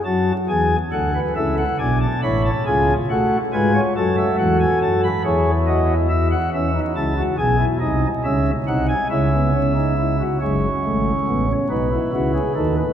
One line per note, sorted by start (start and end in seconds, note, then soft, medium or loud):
0.04 0.32 F#2 medium
0.04 0.32 F#3 medium
0.04 0.32 F#4 medium
0.04 0.32 A5 medium
0.49 0.76 E2 medium
0.49 0.76 E3 medium
0.49 0.76 G#4 medium
0.49 0.76 G#5 medium
0.92 1.19 D2 medium
0.92 1.19 D3 medium
0.92 1.11 A4 medium
0.92 1.19 F#5 medium
1.15 1.33 B4 medium
1.36 1.63 C#2 medium
1.36 1.63 C#3 medium
1.36 1.63 E4 medium
1.36 1.63 A4 medium
1.36 1.55 E5 medium
1.58 1.77 F#5 medium
1.79 2.06 B1 medium
1.79 2.06 B2 medium
1.79 2.06 D4 medium
1.79 2.06 D5 medium
1.79 1.98 G#5 medium
2.01 2.20 A5 medium
2.22 2.50 A1 medium
2.22 2.49 A2 medium
2.22 2.50 E4 medium
2.22 2.50 C#5 medium
2.22 2.42 B5 medium
2.44 2.63 A5 medium
2.66 2.94 C#2 medium
2.66 2.94 C#3 medium
2.66 2.94 F4 medium
2.66 2.93 G#4 medium
2.66 2.93 G#5 medium
3.10 3.37 A3 medium
3.10 3.37 F#4 medium
3.10 3.37 A4 medium
3.10 3.37 F#5 medium
3.53 3.80 G#2 medium
3.53 3.80 G#3 medium
3.53 3.80 F4 medium
3.53 3.72 B4 medium
3.53 3.80 G#5 medium
3.74 3.93 C#5 medium
3.96 4.23 F#2 medium
3.96 4.23 F#3 medium
3.96 5.07 F#4 medium
3.96 5.07 A4 medium
3.96 4.15 A5 medium
4.17 4.36 E5 medium
4.38 4.65 E2 medium
4.38 4.65 E3 medium
4.38 4.57 F#5 medium
4.60 4.79 G#5 medium
4.82 5.08 F#2 medium
4.82 5.09 F#3 medium
4.82 5.01 A5 medium
5.04 5.22 B5 medium
5.24 6.34 E2 medium
5.24 6.34 E3 medium
5.24 6.07 E4 medium
5.24 5.51 G#4 medium
5.24 5.51 C#5 medium
5.67 5.93 F#4 medium
5.67 5.93 D#5 medium
6.09 6.36 E4 medium
6.09 6.28 E5 loud
6.31 6.49 F#5 medium
6.53 6.79 E2 medium
6.53 6.79 E3 medium
6.53 6.71 C#4 medium
6.53 6.80 E5 loud
6.75 6.93 D#4 medium
6.95 7.21 C#2 medium
6.95 7.21 C#3 medium
6.95 7.13 E4 medium
6.95 7.22 A5 medium
7.18 7.35 F#4 medium
7.38 7.64 B1 medium
7.38 7.64 B2 medium
7.38 7.56 G#4 medium
7.38 7.64 G#5 loud
7.59 7.77 E4 medium
7.80 8.07 C2 medium
7.80 8.07 C3 medium
7.80 8.07 D#4 medium
7.80 8.07 D#5 medium
8.24 8.51 C#2 medium
8.24 8.51 C#3 medium
8.24 8.51 C#4 medium
8.24 8.51 E5 medium
8.67 8.94 C2 medium
8.67 8.94 C3 medium
8.67 8.94 D#4 medium
8.67 8.86 F#5 medium
8.89 9.07 G#5 medium
9.10 10.22 C#2 medium
9.10 10.22 C#3 medium
9.10 9.52 C#4 medium
9.10 9.29 E4 medium
9.10 10.22 E5 medium
9.33 9.51 B3 medium
9.54 9.72 C#4 medium
9.75 9.94 D#4 medium
9.98 10.16 E4 medium
10.20 10.38 F#4 medium
10.41 10.67 F#1 medium
10.41 10.67 F#2 medium
10.41 10.68 G#3 medium
10.41 11.47 C#4 medium
10.41 11.52 C#5 medium
10.85 11.11 G#1 medium
10.85 11.11 G#2 medium
10.85 11.11 A3 medium
11.27 11.54 A1 medium
11.27 11.54 A2 medium
11.27 11.46 B3 medium
11.49 11.67 C#4 medium
11.70 11.97 B1 medium
11.70 11.97 B2 medium
11.70 11.97 B3 medium
11.70 11.88 D#4 medium
11.70 12.76 B4 medium
11.92 12.10 E4 medium
12.13 12.40 C#2 medium
12.13 12.40 C#3 medium
12.13 12.40 E4 medium
12.13 12.32 F#4 medium
12.34 12.53 G#4 medium
12.55 12.83 D#2 medium
12.55 12.82 D#3 medium
12.55 12.82 D#4 medium
12.55 12.74 A4 medium
12.78 12.93 B4 medium